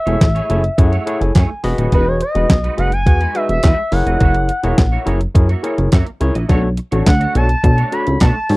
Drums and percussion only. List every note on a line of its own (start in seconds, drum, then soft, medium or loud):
0.07 closed hi-hat soft
0.21 kick loud
0.21 snare loud
0.21 clap medium
0.21 closed hi-hat loud
0.36 closed hi-hat soft
0.50 closed hi-hat medium
0.64 closed hi-hat medium
0.78 kick loud
0.78 closed hi-hat medium
0.93 closed hi-hat soft
1.07 closed hi-hat medium
1.21 closed hi-hat medium
1.35 kick loud
1.35 snare loud
1.35 clap medium
1.35 closed hi-hat loud
1.64 open hi-hat medium
1.78 closed hi-hat medium
1.92 kick medium
1.92 closed hi-hat medium
2.21 closed hi-hat medium
2.35 closed hi-hat medium
2.50 kick loud
2.50 snare loud
2.50 clap loud
2.50 closed hi-hat loud
2.64 closed hi-hat soft
2.78 closed hi-hat medium
2.92 closed hi-hat soft
3.06 kick loud
3.06 closed hi-hat medium
3.21 closed hi-hat soft
3.35 closed hi-hat medium
3.49 closed hi-hat medium
3.63 kick loud
3.63 snare loud
3.63 clap medium
3.63 closed hi-hat medium
3.92 open hi-hat medium
4.07 closed hi-hat medium
4.20 kick medium
4.20 closed hi-hat medium
4.35 closed hi-hat soft
4.49 closed hi-hat medium
4.64 closed hi-hat medium
4.78 kick loud
4.78 snare loud
4.78 clap medium
4.78 closed hi-hat loud
5.07 closed hi-hat medium
5.21 closed hi-hat medium
5.35 kick loud
5.35 closed hi-hat medium
5.49 closed hi-hat soft
5.64 closed hi-hat medium
5.78 closed hi-hat medium
5.92 kick loud
5.92 snare loud
5.92 clap medium
5.92 closed hi-hat medium
6.07 closed hi-hat soft
6.21 closed hi-hat medium
6.35 closed hi-hat medium
6.49 kick medium
6.49 closed hi-hat medium
6.77 closed hi-hat medium
6.92 closed hi-hat medium
7.06 kick loud
7.06 snare loud
7.06 clap loud
7.06 closed hi-hat loud
7.21 closed hi-hat soft
7.35 closed hi-hat medium
7.49 closed hi-hat medium
7.64 kick loud
7.64 closed hi-hat medium
7.78 closed hi-hat soft
7.92 closed hi-hat medium
8.07 closed hi-hat medium
8.20 kick loud
8.20 snare loud
8.20 clap medium
8.20 closed hi-hat medium
8.49 open hi-hat medium